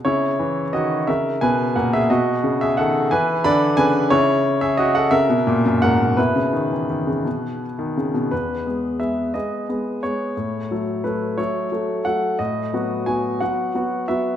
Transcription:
X:1
M:6/8
L:1/16
Q:3/8=59
K:E
V:1 name="Grand piano"
[Ec]4 [Fd]2 [^Ae]2 [Bg]2 [Af] [Ge] | [Fd]3 [Ge] [Af]2 [Bg]2 [=db]2 [Bg]2 | [Ec]3 [Ge] [Fd] [Af] [^Ae]4 [Af]2 | [EB]8- [EB]2 z2 |
B4 e2 d4 c2- | c4 B2 c4 f2 | d4 g2 f4 e2 |]
V:2 name="Grand piano" clef=bass
C,2 E,2 D,2 C,2 B,,2 ^A,,2 | B,,2 C,2 D,2 E,2 =D,2 C,2 | C,6 C, B,, ^A,, F,, G,, A,, | B,, C, D, E, D, C, B,,3 D, C, B,, |
E,,2 [G,B,G]2 [G,B,G]2 [G,B,G]2 [G,B,G]2 [G,B,G]2 | A,,2 [F,A,A]2 [F,A,A]2 [F,A,A]2 [F,A,A]2 [F,A,A]2 | A,,2 [F,B,F]2 [F,B,F]2 [F,B,F]2 [F,B,F]2 [F,B,F]2 |]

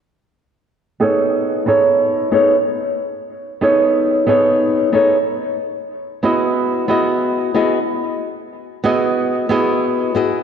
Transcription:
X:1
M:4/4
L:1/8
Q:1/4=92
K:Bmix
V:1 name="Nylon-string guitar"
z3 [B,DGAc]2 [B,DGAc]2 [B,DGAc] | z3 [B,DGAc]2 [B,DGAc]2 [B,DGAc] | z3 [B,EFGd]2 [B,EFGd]2 [B,EFGd] | z3 [B,EFGd]2 [B,EFGd]2 [B,EFGd] |]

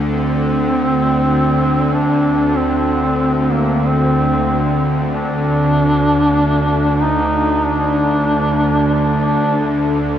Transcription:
X:1
M:4/4
L:1/16
Q:1/4=47
K:Cdor
V:1 name="Duduk"
C6 D2 C3 B, C3 z | D6 E2 D4 D3 z |]
V:2 name="Synth drone" clef=bass
[D,,D,]16- | [D,,D,]16 |]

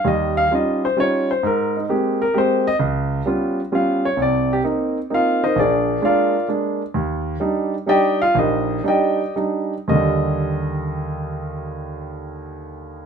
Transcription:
X:1
M:3/4
L:1/8
Q:"Swing" 1/4=131
K:Eb
V:1 name="Grand piano"
e f e c _d c | B E z B c e | z4 f _d | d G z2 [Ff] [EBce] |
[DABd]2 [FBdf]2 z2 | z4 [Gdeg] [Ff] | [EGBe]2 [Gdeg]2 z2 | [E,,D,E,G,e]6- |
[E,,D,E,G,e]6 |]
V:2 name="Grand piano"
[E,,G,]2 [G,_DEF] z [G,DEF] z | A,,2 [A,B,CG] z [A,B,CG] z | _D,,2 [G,_C_DF] z [G,CDF] z | [C,,C,]2 [B,CE] z [B,CE] z |
B,,,2 [A,B,D] z [A,B,D] z | E,,2 [G,DE] z [G,DE] z | B,,,2 [G,DE] z [G,DE] z | z6 |
z6 |]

